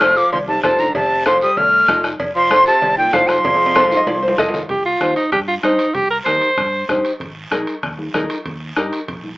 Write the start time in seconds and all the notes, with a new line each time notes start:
Already playing: F1 A3 F6
0.01 F4 A4 C5, bombo rim, cowbell, high conga, short guiro
0.16 F3 D6, short guiro
0.32 C2 F3 C6, cowbell, high conga, low conga, long guiro
0.48 C3 A5, high conga
0.63 F1 C3 F4 A4 C5 A5, bombo low, bombo rim, cowbell, high conga, short guiro
0.79 D3 A#5, high conga, short guiro
0.95 F1 C3 A5, bombo low, cowbell, high conga, low conga, long guiro
1.25 F3 F4 A4 C5 C6, bombo rim, cowbell, high conga, short guiro
1.41 G3 D#6, short guiro
1.57 C2 A3 F6, cowbell, high conga, low conga, long guiro
1.88 F1 F4 A4 D#5, bombo low, bombo rim, cowbell, high conga, short guiro
2.04 bombo rim, high conga, short guiro
2.19 F1, bombo low, cowbell, high conga, long guiro
2.36 F3 C6
2.50 F4 A4 C5, bombo rim, cowbell, high conga, short guiro
2.66 C3 A5, short guiro
2.82 C2, cowbell, high conga, low conga, long guiro
2.97 A#2 G5, high conga
3.13 F1 A2 F4 A4 C5 F5, bombo low, bombo rim, cowbell, high conga, short guiro
3.29 F3 C6, bombo rim, high conga, short guiro
3.44 F1, bombo low, cowbell, high conga, low conga, high timbale, long guiro
3.55 high timbale
3.66 high timbale
3.75 F4 A4 C5, bombo rim, cowbell, high conga, high timbale, short guiro
3.86 low timbale
3.91 F5, high conga, short guiro
3.97 D#5
4.07 C2 D5, cowbell, high conga, low timbale, long guiro
4.22 C5
4.28 low timbale
4.38 F1 F4 A4 D#5, bombo low, bombo rim, cowbell, low timbale, short guiro
4.49 low timbale
4.54 low conga, short guiro
4.59 low timbale
4.69 C2 G4, bombo low, high timbale, long guiro
4.86 F4
5.00 D#2 D#4 G4 C5, bombo rim, high conga, high timbale, short guiro
5.16 D#4, high timbale, short guiro
5.32 G2 G4, bombo low, bombo rim, high timbale, long guiro
5.48 F4
5.63 G2 D#4 G4 C5, bombo rim, high conga, high timbale, short guiro
5.79 high timbale, short guiro
5.94 C2 G4, bombo low, high timbale, long guiro
6.11 A#4
6.25 D#2 D#4 G4 A#4 C5, bombo rim, high conga, high timbale, short guiro
6.41 high timbale, short guiro
6.57 G2, bombo low, bombo rim, high timbale, long guiro
6.89 G2 D#4 G4 C5, bombo low, bombo rim, high conga, high timbale, short guiro
7.05 high timbale, short guiro
7.20 G#1, bombo low, high timbale, long guiro
7.51 A#1 D#4 G#4 A#4, bombo rim, high conga, high timbale, short guiro
7.67 high timbale, short guiro
7.83 D#2, bombo low, bombo rim, high timbale, long guiro
7.98 high conga
8.14 D#2 D#4 G#4 A#4, bombo low, bombo rim, high conga, high timbale, low timbale, short guiro
8.30 high timbale, short guiro
8.45 D#2, bombo low, high timbale, long guiro
8.76 G2 D#4 G4 A#4, bombo rim, high conga, high timbale, short guiro
8.93 high timbale, short guiro
9.08 A#1, bombo low, high timbale, long guiro
9.24 high conga